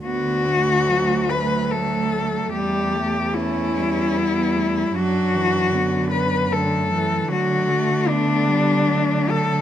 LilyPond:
<<
  \new Staff \with { instrumentName = "Cello" } { \time 3/4 \key d \major \tempo 4 = 75 fis'4. b'8 a'4 | g'4 e'2 | fis'4. b'8 a'4 | fis'4 d'4. a'8 | }
  \new Staff \with { instrumentName = "Cello" } { \time 3/4 \key d \major b8 a2~ a8~ | a4 cis'4 b8 a8 | d'4 b4 a4 | a4 b4 a4 | }
  \new Staff \with { instrumentName = "Cello" } { \clef bass \time 3/4 \key d \major d4 fis8 fis4. | g8 a8 a8 g4. | fis8 e8 d4 d8 e8 | fis8 a8 a8 g8 fis4 | }
  \new Staff \with { instrumentName = "Cello" } { \clef bass \time 3/4 \key d \major d,2. | e,2. | fis,2. | d2. | }
>>